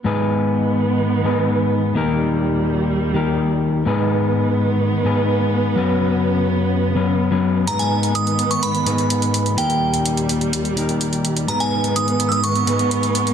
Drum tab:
HH |----------------|----------------|----------------|----------------|

HH |xx-xxxxxxxxxxxxx|xx-xxxxxxxxxxxxx|xx-xxxxxxxxxxxxx|